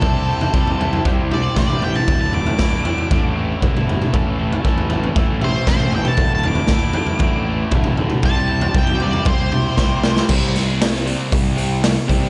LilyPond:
<<
  \new Staff \with { instrumentName = "Lead electric guitar" } { \time 4/4 \key c \lydian \tempo 4 = 117 a'2 r8 d''8 d''8 g''16 a''16~ | a''16 a''16 d'''2. r8 | r2 r8 c''8 c''8 g''16 a''16~ | a''16 a''16 d'''2. r8 |
a''4 g''8 d''8 c''2 | r1 | }
  \new Staff \with { instrumentName = "Clean electric guitar" } { \time 4/4 \key c \lydian c8 g8 c'8 e'8 c''8 g'8 c''8 e'8 | r1 | r1 | r1 |
r1 | r1 | }
  \new Staff \with { instrumentName = "Overdriven electric guitar" } { \time 4/4 \key c \lydian <c g c' e' g' c''>8 <c' e' g' c''>8 <c' e' g' c''>8 <c g c' e' g' c''>8 <c' e' g' c''>8 <c' e' g' c''>8 <c g c' e' g' c''>8 <c' e' g' c''>8 | <d, a, d a e'>8 <d a e'>8 <a, d a e'>8 <d, a, d a e'>8 <a, d a e'>8 <d a e'>8 <d, a, d a e'>8 <d a e'>8 | <a, e a cis' e' a'>8 <a cis' e' a'>8 <a cis' e' a'>8 <a, e a cis' e' a'>8 <a cis' e' a'>8 <a cis' e' a'>8 <a, e a cis' e' a'>8 <a cis' e' a'>8 | <d, a, d a e'>8 <d a e'>8 <a, d a e'>8 <d, a, d a e'>8 <a, d a e'>8 <d a e'>8 <d, a, d a e'>8 <d a e'>8 |
<c g c' e' g' c''>8 <c' e' g' c''>8 <c' e' g' c''>8 <c g c' e' g' c''>8 <c' e' g' c''>8 <c' e' g' c''>8 <c g c' e' g' c''>8 <c' e' g' c''>8 | <c g c'>8 <c g>8 <c g>8 <c g c'>8 <c g>8 <c g c'>8 <c g>8 <c g c'>8 | }
  \new Staff \with { instrumentName = "Distorted electric guitar" } { \clef bass \time 4/4 \key c \lydian r1 | r1 | r1 | r1 |
r1 | <c g c'>1 | }
  \new Staff \with { instrumentName = "Picked electric bass" } { \clef bass \time 4/4 \key c \lydian c,4 c,4 c,4 a,,4 | d,,4 d,,8 r8 a,,4 g,,4 | a,,4 a,,4 a,,4 a,,4 | d,,4 d,,8 r8 a,,4 d,,4 |
c,4 c,4 c,4 c,4 | c,2 c,4. c,8 | }
  \new DrumStaff \with { instrumentName = "Drums" } \drummode { \time 4/4 <bd tomfh>8. tomfh16 bd16 tomfh16 tomfh16 tomfh16 <bd tomfh>8 toml8 <bd sn tomfh toml>16 toml16 tomfh16 toml16 | <bd tomfh>8 tomfh16 tomfh16 <bd sn>8 tomfh16 tomfh16 <bd tomfh>4 <bd tomfh toml>16 toml16 tomfh16 toml16 | <bd tomfh>8. tomfh16 bd16 tomfh16 tomfh16 tomfh16 <bd tomfh>8 toml8 <bd sn tomfh toml>16 toml16 tomfh16 toml16 | <bd tomfh>8 tomfh16 tomfh16 <bd sn>8 tomfh16 tomfh16 <bd tomfh>4 <bd tomfh toml>16 toml16 tomfh16 toml16 |
<bd tomfh>8. tomfh16 bd16 tomfh16 tomfh16 tomfh16 <bd tomfh>8 toml8 <bd sn>8 sn16 sn16 | <cymc bd>8 <hho sn>8 <hho sn>16 sn16 hho8 <hho bd>8 hho8 <hho sn>8 <hho bd>8 | }
>>